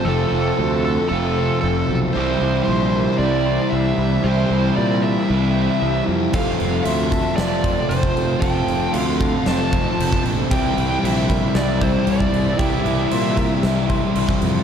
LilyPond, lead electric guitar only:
\new Staff \with { instrumentName = "Lead electric guitar" } { \time 4/4 \key f \major \tempo 4 = 115 a'4. a'8 a'4 a'8. r16 | c''4 c''4 d''4 e''4 | c''4 d''8 e''2 r8 | f''4 e''4 d''4 c''4 |
g''4 f''4 a''4. r8 | g''4 e''4 d''8 c''8 d''4 | e''2.~ e''8 r8 | }